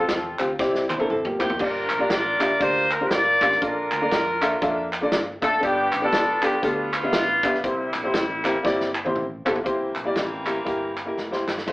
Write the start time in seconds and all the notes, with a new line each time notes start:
Already playing: C3 C4 F4 A4
0.00 F4 A4
0.09 E2, kick, snare, closed hi-hat
0.39 D2 C4 F4 G4, clap, closed hi-hat
0.59 C2 C3 C4 E4 G4 D5, kick, snare
0.75 snare
0.90 E4 C5, clap, high tom
0.99 C4 D4 E4 A4 A#4, high tom
1.10 G1 C4 A4, mid tom
1.25 A#3 G4, mid tom
1.39 F1 C4 E4 G4, clap, floor tom
1.50 floor tom
1.59 G1 G2 A#3 D4 F4 G4 A#4 D5, kick, crash
1.89 A#1, clap, closed hi-hat
1.98 A#3 D4 F4 G4 D5
2.10 A1 F4 A#4 D5, kick, snare, closed hi-hat
2.39 A#1 A#3 D4 F4 G4 E5, clap, closed hi-hat
2.59 D2 A#3 D4 F4 G4 C5 D5, kick, closed hi-hat
2.91 A#4, clap, closed hi-hat
3.00 A#3 D4 F4 G4 C5
3.11 G1 F4 A#4 D5, snare, closed hi-hat
3.41 A1 A#3 D4 F4 G4 F5, kick, clap, closed hi-hat
3.52 snare
3.61 A#1 A#2 A#3 D4 F4 A4 A#4 D5, kick, closed hi-hat
3.92 D2, clap, closed hi-hat
4.01 A#3 D4 F4 A4 D5
4.12 F2, kick, snare, closed hi-hat
4.42 A#3 D4 F4 A4 E5, clap, closed hi-hat
4.61 F2 A#3 D4 F4 A4 E5, kick, closed hi-hat
4.93 clap, closed hi-hat
5.01 A#3 D4 F4 A4 D5
5.12 G1, snare, closed hi-hat
5.42 F1 A#3 D4 F4 A4 E5, kick, clap, closed hi-hat
5.61 G1 G2 B3 D4 F4 G4 D5, kick, closed hi-hat
5.92 A1, clap, closed hi-hat
6.02 B3 D4 F4 G4 A4 D5
6.13 kick, snare, closed hi-hat
6.42 B3 D4 F4 G4 A4, clap, closed hi-hat
6.63 D2 B3 D4 F4 G4 A4, kick, closed hi-hat
6.93 clap, closed hi-hat
7.03 B3 D4 F4 G4 E5
7.13 A1, snare, closed hi-hat
7.43 B1 B3 D4 F4 G4 E5, kick, clap, closed hi-hat
7.54 snare
7.64 C2 C3 G3 A#3 C4 E4 G4 C5, kick, closed hi-hat
7.94 A#1, clap, closed hi-hat
8.03 A#3 C4 E4 G4 C5
8.14 A1, kick, snare, closed hi-hat
8.44 A#3 C4 E4 G4 A#4, clap, closed hi-hat
8.63 G1 A#3 C4 E4 G4 D5, kick, snare
8.81 snare
8.95 clap
9.05 A#3 C4 E4 G4 C5, high tom
9.15 A1, mid tom
9.45 A#1 A#3 C4 E4 G4 A4, clap, floor tom
9.56 floor tom
9.64 C2 C3 E3 G3 A#3 C4 E4 G4 C5, kick, closed hi-hat
9.95 A#1, clap, closed hi-hat
10.05 A#3 E4 G4 D5
10.16 A1, kick, snare, closed hi-hat
10.46 A#3 E4 G4 A#4, clap, closed hi-hat
10.65 G1 A#3 E4 G4 A#4, kick, closed hi-hat
10.97 clap, closed hi-hat
11.06 A#3 E4 G4 A#4
11.17 F1, snare
11.31 A#3 E4 G4 C5, snare
11.48 G1, snare, clap
11.58 snare
11.67 F1 A3 E4 F4 C5, kick, crash